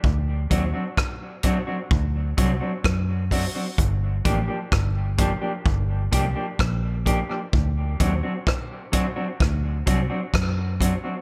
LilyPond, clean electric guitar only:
\new Staff \with { instrumentName = "Clean electric guitar" } { \time 4/4 \key d \phrygian \tempo 4 = 64 r8 <fis c' d' fis'>16 <fis c' d' fis'>16 r8 <fis c' d' fis'>16 <fis c' d' fis'>16 r8 <fis c' d' fis'>16 <fis c' d' fis'>16 r8 <fis c' d' fis'>16 <fis c' d' fis'>16 | r8 <f bes d' g'>16 <f bes d' g'>16 r8 <f bes d' g'>16 <f bes d' g'>16 r8 <f bes d' g'>16 <f bes d' g'>16 r8 <f bes d' g'>16 <f bes d' g'>16 | r8 <fis c' d' fis'>16 <fis c' d' fis'>16 r8 <fis c' d' fis'>16 <fis c' d' fis'>16 r8 <fis c' d' fis'>16 <fis c' d' fis'>16 r8 <fis c' d' fis'>16 <fis c' d' fis'>16 | }